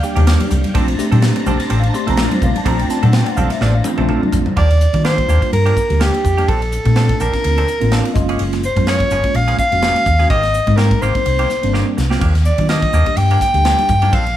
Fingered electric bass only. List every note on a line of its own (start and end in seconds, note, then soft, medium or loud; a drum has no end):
0.17 0.35 D#2 medium
0.51 0.61 C2 medium
0.75 0.93 A#1 loud
1.12 1.30 A#2 medium
1.47 1.57 A#1 medium
1.71 1.89 A1 medium
2.08 2.26 A#1 loud
2.42 2.52 A#1 medium
2.66 2.84 A#1 loud
2.90 muted fingered electric bass stroke soft
3.03 3.21 A#2 medium
3.37 3.47 A#1 medium
3.61 3.79 A1 loud
3.98 4.16 A#1 medium
4.32 4.43 A#1 medium
4.57 4.85 D#2 medium
4.94 5.20 D#3 medium
5.28 5.39 D#2 medium
5.53 5.71 G2 medium
5.90 6.08 D2 medium
6.24 6.43 F2 medium
6.49 6.77 A#1 loud
6.85 7.12 A#2 medium
7.21 7.31 A#1 medium
7.45 7.63 D2 medium
7.82 8.00 A1 medium
8.16 8.34 F#1 medium
8.40 8.68 F#1 medium
8.77 9.03 F#2 medium
9.11 9.21 F#1 medium
9.24 muted fingered electric bass stroke soft
9.35 9.53 A#1 medium
9.72 9.90 F1 medium
10.06 10.25 D#2 medium
10.30 10.59 G#1 medium
10.67 10.94 G#2 medium
11.02 11.13 G#1 medium
11.15 muted fingered electric bass stroke soft
11.26 11.45 C2 medium
11.64 11.82 G1 medium
11.98 12.16 C2 medium
12.21 12.50 D#2 medium
12.58 12.85 D#3 medium
12.93 13.04 D#2 medium
13.17 13.35 G2 medium
13.54 13.73 D2 medium
13.89 14.07 G2 medium
14.13 14.37 A#1 medium